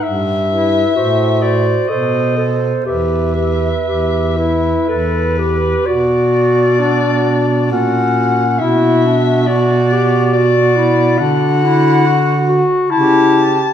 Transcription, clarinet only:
\new Staff \with { instrumentName = "Clarinet" } { \time 3/4 \key e \minor \tempo 4 = 66 r8 e'8 fis'8 fis'8 a'8 a'8 | g'8 g'8 g'8 e'8 a'8 g'8 | \key b \minor fis'4 d'4 cis'4 | e'8 d'8 fis'8 g'8 fis'8 e'8 |
d'8 e'8 fis'8 fis'8 e'8 r8 | }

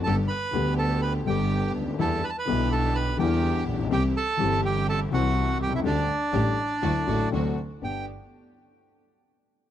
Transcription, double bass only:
\new Staff \with { instrumentName = "Double bass" } { \clef bass \time 4/4 \key g \major \tempo 4 = 124 g,,8 r8 d,4. g,,4 d,8 | e,8 r8 b,,4. e,4 bes,,8 | c,8 r8 g,,4. c,4 c,8 | d,8 r8 a,,8 r8 d,8 a,,8 d,8 r8 |
g,,8 r2. r8 | }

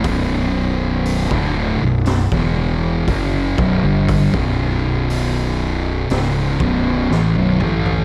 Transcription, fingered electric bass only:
\new Staff \with { instrumentName = "Fingered electric bass" } { \clef bass \time 4/4 \key b \minor \tempo 4 = 60 b,,,4~ b,,,16 d,,8 b,,,8 e,,8. fis,,8 b,,,16 g,,16~ | g,,16 b,,,4.~ b,,,16 cis,,8 b,,,8 a,,16 b,,,16 a,,8 | }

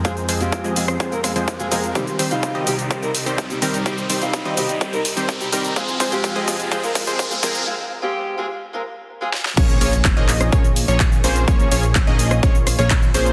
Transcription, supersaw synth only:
\new Staff \with { instrumentName = "Supersaw synth" } { \time 4/4 \key f \minor \tempo 4 = 126 <f aes c' aes' c''>8 <f aes c' aes' c''>16 r8 <f aes c' aes' ees''>8. <f aes c' aes' c''>16 r8 <f aes c' aes' c''>16 r8 <f aes c' aes' bes'>8 | <ees g c' g' c''>8 <ees g c' g' c''>16 r8 <ees g c' g' ees''>8. <ees g c' g' c''>16 r8 <ees g c' g' c''>16 r8 <ees g c' g' bes'>8 | <ees g c' g' c''>8 <ees g c' g' c''>16 r8 <ees g c' g' ees''>8. <ees g c' g' c''>16 r8 <ees g c' g' c''>16 r8 <ees g c' g' bes'>8 | <aes c' aes' c''>8 <f aes c' aes' c''>16 r8 <f aes c' aes' ees''>8. <f aes c' aes' c''>16 r8 <f aes c' aes' c''>16 r8 <f aes c' aes' bes'>8 |
r1 | <f bes des' aes' des''>8 <f bes des' aes' des''>16 r8 <f bes des' aes' ees''>8. <f bes des' aes' des''>16 r8 <f bes des' aes' des''>16 r8 <f bes des' aes' c''>8 | <f bes des' aes' des''>8 <f bes des' aes' des''>16 r8 <f bes des' aes' ees''>8. <f bes des' aes' des''>16 r8 <f bes des' aes' des''>16 r8 <f bes des' aes' c''>8 | }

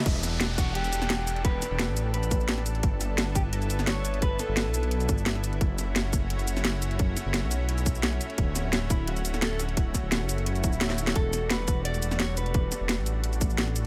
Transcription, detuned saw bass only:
\new Staff \with { instrumentName = "Detuned saw bass" } { \clef bass \time 4/4 \key e \dorian \tempo 4 = 173 e,,2~ e,,8 e,,4.~ | e,,8 r16 e,,8 a,,2~ a,,8. | g,,2~ g,,8 g,,4.~ | g,,8 r16 g,,8 b,,4~ b,,16 g,,4. |
fis,,2~ fis,,8 fis,,4.~ | fis,,8 r16 fis,,8 b,,2~ b,,16 r8 | d,,2~ d,,8 d,,4.~ | d,,8 r16 d,,8 fis,,4~ fis,,16 d,,4. |
e,,2~ e,,8 e,,4.~ | e,,8 r16 e,,8 a,,2~ a,,8. | }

